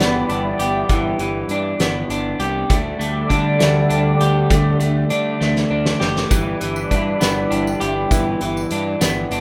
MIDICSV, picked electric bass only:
0, 0, Header, 1, 2, 480
1, 0, Start_track
1, 0, Tempo, 601202
1, 718, Time_signature, 6, 3, 24, 8
1, 7509, End_track
2, 0, Start_track
2, 0, Title_t, "Picked electric bass"
2, 0, Program_c, 0, 34
2, 0, Note_on_c, 0, 31, 83
2, 183, Note_off_c, 0, 31, 0
2, 234, Note_on_c, 0, 31, 79
2, 420, Note_off_c, 0, 31, 0
2, 473, Note_on_c, 0, 31, 83
2, 660, Note_off_c, 0, 31, 0
2, 713, Note_on_c, 0, 31, 96
2, 900, Note_off_c, 0, 31, 0
2, 953, Note_on_c, 0, 31, 75
2, 1140, Note_off_c, 0, 31, 0
2, 1189, Note_on_c, 0, 43, 79
2, 1378, Note_off_c, 0, 43, 0
2, 1435, Note_on_c, 0, 31, 74
2, 1621, Note_off_c, 0, 31, 0
2, 1673, Note_on_c, 0, 31, 81
2, 1860, Note_off_c, 0, 31, 0
2, 1911, Note_on_c, 0, 36, 91
2, 2099, Note_off_c, 0, 36, 0
2, 2157, Note_on_c, 0, 38, 98
2, 2342, Note_off_c, 0, 38, 0
2, 2393, Note_on_c, 0, 38, 86
2, 2580, Note_off_c, 0, 38, 0
2, 2638, Note_on_c, 0, 50, 91
2, 2823, Note_off_c, 0, 50, 0
2, 2882, Note_on_c, 0, 38, 85
2, 3065, Note_off_c, 0, 38, 0
2, 3117, Note_on_c, 0, 38, 90
2, 3303, Note_off_c, 0, 38, 0
2, 3359, Note_on_c, 0, 38, 83
2, 3543, Note_off_c, 0, 38, 0
2, 3600, Note_on_c, 0, 38, 103
2, 3784, Note_off_c, 0, 38, 0
2, 3839, Note_on_c, 0, 38, 70
2, 4024, Note_off_c, 0, 38, 0
2, 4085, Note_on_c, 0, 50, 79
2, 4267, Note_off_c, 0, 50, 0
2, 4321, Note_on_c, 0, 38, 85
2, 4505, Note_off_c, 0, 38, 0
2, 4557, Note_on_c, 0, 38, 80
2, 4742, Note_off_c, 0, 38, 0
2, 4801, Note_on_c, 0, 30, 87
2, 4985, Note_off_c, 0, 30, 0
2, 5038, Note_on_c, 0, 31, 95
2, 5223, Note_off_c, 0, 31, 0
2, 5283, Note_on_c, 0, 31, 71
2, 5466, Note_off_c, 0, 31, 0
2, 5518, Note_on_c, 0, 43, 89
2, 5703, Note_off_c, 0, 43, 0
2, 5758, Note_on_c, 0, 31, 86
2, 5943, Note_off_c, 0, 31, 0
2, 5998, Note_on_c, 0, 31, 82
2, 6183, Note_off_c, 0, 31, 0
2, 6241, Note_on_c, 0, 31, 84
2, 6425, Note_off_c, 0, 31, 0
2, 6476, Note_on_c, 0, 31, 105
2, 6662, Note_off_c, 0, 31, 0
2, 6719, Note_on_c, 0, 31, 81
2, 6903, Note_off_c, 0, 31, 0
2, 6957, Note_on_c, 0, 43, 91
2, 7142, Note_off_c, 0, 43, 0
2, 7194, Note_on_c, 0, 31, 86
2, 7380, Note_off_c, 0, 31, 0
2, 7433, Note_on_c, 0, 31, 85
2, 7509, Note_off_c, 0, 31, 0
2, 7509, End_track
0, 0, End_of_file